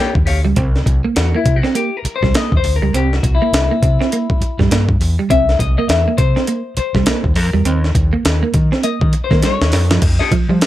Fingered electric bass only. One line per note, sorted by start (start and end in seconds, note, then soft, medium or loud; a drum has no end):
0.15 0.25 D#2 medium
0.28 0.45 D2 medium
0.45 0.55 C#2 medium
0.57 0.81 C2 loud
0.86 1.01 C2 medium
1.17 1.31 E2 medium
1.46 1.60 C3 loud
2.05 muted fingered electric bass stroke medium
2.23 2.32 C2 medium
2.52 2.62 D#2 medium
2.63 2.78 D2 medium
2.81 2.91 C#2 medium
2.94 3.18 C2 loud
3.23 3.38 C2 medium
3.52 3.67 C2 medium
3.82 3.97 C3 medium
4.41 muted fingered electric bass stroke medium
4.59 4.69 G2 medium
4.70 4.95 G2 medium
5.00 5.15 E2 loud
5.31 5.54 C2 loud
5.60 5.74 C2 loud
5.89 6.03 E2 medium
6.18 6.33 C3 medium
6.77 muted fingered electric bass stroke medium
6.95 7.05 C2 medium
7.24 7.36 D#2 medium
7.36 7.51 F2 loud
7.54 7.64 E2 medium
7.65 7.90 D#2 loud
7.95 8.10 D#2 medium
8.25 8.40 D#2 loud
8.54 8.69 D#3 loud
9.02 9.11 D#3 loud
9.31 9.41 D#3 loud
9.61 9.73 D#2 medium
9.73 9.91 F2 medium
9.91 10.00 F#2 medium
10.02 10.17 F2 loud
10.32 muted fingered electric bass stroke soft
10.49 10.59 F3 medium